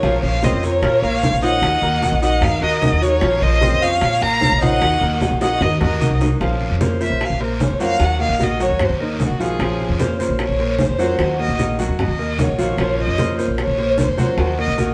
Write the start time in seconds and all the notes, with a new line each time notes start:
Already playing: A#4 C#5
0.03 A#1 F3 A#3 C#4 F4 C5 F5, high bongo, high conga, long guiro
0.23 A#1 C#5 F5, high bongo, high conga
0.43 F3 A#3 C4 C#4 F4 C5 D#5 C6, high bongo, high conga, short guiro
0.52 F2
0.63 C#4 F4 A#4 C5 C#5, high conga, short guiro
0.82 A#2 F4 F5 F6, muted nylon-string guitar stroke, high bongo, high conga, long guiro
1.02 A#1 A#3 A#4 C#5 F5 A#5, high bongo, high conga
1.22 A#3 C#4 F4 C5, high bongo, low bongo, high conga, short guiro
1.32 A#1
1.42 A#3 C#4 D#4 F4 C5 D#5 F#5 D#6, high bongo, short guiro
1.62 D#2 D#3 A#3 D#4 F#4, high bongo, high conga, long guiro
1.82 D#2 A#3 A#4 A#5, high bongo, high conga
2.02 D#3 A#3 D#4 F#4, high bongo, high conga, short guiro
2.12 A#1
2.22 A#3 D#4 F#4 D#5 F#5 D#6, high conga, short guiro
2.41 D#3 A#4 F5, muted nylon-string guitar stroke, high bongo, high conga, low conga, long guiro
2.61 D#2 F#4 A#4 D#5 F#5 F#6, high bongo, high conga
2.82 D#3 A#3 D#4 F#4 D#5 D#6, high bongo, low bongo, high conga, short guiro
2.92 D#2
3.02 A#3 D#4 F#4 A#4 C#5, high bongo, high conga, short guiro
3.21 A#1 F3 A#3 C#4 F4 C5 F5, high bongo, high conga, long guiro
3.41 A#1 C5 D#5, high bongo, high conga
3.61 F3 A#3 C4 C#4 F4 C5 C6, high bongo, high conga, short guiro
3.72 F2
3.81 C#4 F4 C5 C#5 F5, high conga, short guiro
4.01 A#2 F4 F5 F6, muted nylon-string guitar stroke, high bongo, high conga, long guiro
4.21 A#1 A#3 A#4 F5 A#5, high bongo, high conga
4.41 A#3 C#4 F4 C5, high bongo, low bongo, high conga, short guiro
4.52 A#1
4.61 A#3 C#4 D#4 F4 C5 D#5 F#5 D#6, high bongo, high conga, short guiro
4.81 D#2 D#3 A#3 D#4 F#4, high bongo, high conga, long guiro
5.01 D#2 A#3 A#4 A#5, high bongo, high conga
5.21 D#3 A#3 D#4 F#4, high bongo, high conga, short guiro
5.31 A#1
5.41 A#3 D#4 F#4 D#5 F#5 D#6, high bongo, high conga, short guiro
5.61 D#3 A#4 D#5, muted nylon-string guitar stroke, high bongo, high conga, low conga, long guiro
5.81 D#2 F#4 A#4 D#5 F#5 F#6, high bongo, high conga, low conga
6.00 D#3 A#3 D#4 F#4 D#5 D#6, high conga, short guiro
6.11 C2
6.21 A#3 D#4 F#4, low bongo, short guiro
6.41 A#1 F3 A#3 C#4 F4 C5 F5, high bongo, high conga, long guiro
6.61 high bongo, high conga
6.71 F2
6.80 F3 A#3 C#4 F4 A#4 C5, high bongo, high conga, short guiro
7.00 A#3 C#4 F4 A#4 C5 E5, high conga, short guiro
7.10 A#1
7.21 muted nylon-string guitar stroke, high bongo, high conga, long guiro
7.25 F5
7.30 A#1
7.40 A#3 A#4 C5, high bongo, high conga
7.60 A#3 C#4 F4 C5, high bongo, low bongo, high conga, short guiro
7.64 C#5
7.70 F2
7.80 F#3 A#3 C#4 F4 F#4 C5 F5 F#5, high bongo, short guiro
8.00 D#2 D#3 A#3 D#4 F#4, high bongo, high conga, long guiro
8.04 F#5
8.20 A#3 A#4 D#5 F5, high bongo, high conga
8.29 A#1
8.40 D#3 A#3 D#4 F#4 A#4 D#5, high bongo, high conga, short guiro
8.60 F#3 A#3 D#4 F#4 C#5 F#5, high conga, short guiro
8.69 D#2
8.79 muted nylon-string guitar stroke, high bongo, high conga, low conga, long guiro
8.84 C5
8.89 D#2
9.00 A#3 D#4 A#4 D#5, high bongo, high conga
9.20 D#3 A#3 D#4 F#4, high bongo, low bongo, high conga, short guiro
9.29 A#1
9.40 F3 A#3 D#4 F4 F#4 G#4 F5, high bongo, high conga, short guiro
9.59 A#1 F3 A#3 C#4 F4 C5 F5, high bongo, high conga, long guiro
9.79 high bongo, high conga
9.89 F2
9.99 F3 A#3 C#4 F4 A#4 C5, high bongo, high conga, short guiro
10.19 A#3 C#4 F4 A#4 C5, high conga, short guiro
10.29 A#1
10.39 muted nylon-string guitar stroke, high bongo, high conga, long guiro
10.43 C#5
10.49 A#1
10.59 A#3 A#4 C5, high bongo, high conga
10.79 A#3 C#4 F4 C5, high bongo, low bongo, high conga, short guiro
10.83 C5
10.89 F2
10.98 F#3 A#3 C#4 F4 F#4 C5 F#5, high bongo, short guiro
11.18 D#2 D#3 A#3 D#4 F#4, high bongo, high conga, long guiro
11.38 A#3 A#4 D#5, high bongo, high conga
11.48 A#1
11.58 D#3 A#3 D#4 F#4 A#4 D#5, high bongo, high conga, short guiro
11.79 F#3 A#3 D#4 F#4 F#5, high conga, short guiro
11.88 D#2
11.99 D#5, muted nylon-string guitar stroke, high bongo, high conga, low conga, long guiro
12.08 D#2
12.19 A#3 A#4 D#5, high bongo, high conga
12.38 D#3 A#3 D#4 F#4 C#5, high bongo, low bongo, high conga, short guiro
12.48 A#1
12.58 F3 A#3 D#4 F4 F#4 F5, high bongo, high conga, short guiro
12.77 A#1 F3 A#3 C#4 F4 C5 F5, high bongo, high conga, long guiro
12.99 D#5, high bongo, high conga
13.07 F2
13.17 F3 A#3 C#4 F4 A#4 C5, high bongo, high conga, short guiro
13.38 A#3 C#4 F4 A#4 C5, high conga, short guiro
13.48 A#1
13.58 muted nylon-string guitar stroke, high bongo, high conga, long guiro
13.63 C#5
13.67 A#1
13.78 A#3 A#4 C5, high bongo, high conga
13.98 A#3 C#4 F4 C5, high bongo, low bongo, high conga, short guiro
14.02 C5
14.08 F2
14.17 F#3 A#3 C#4 F4 F#4 C5 F#5, high bongo, high conga, short guiro
14.37 D#2 D#3 A#3 D#4 F#4, high bongo, high conga, long guiro
14.58 A#3 A#4 D#5, high bongo, high conga
14.68 A#1
14.77 D#3 A#3 D#4 F#4 A#4 D#5, high bongo, high conga, short guiro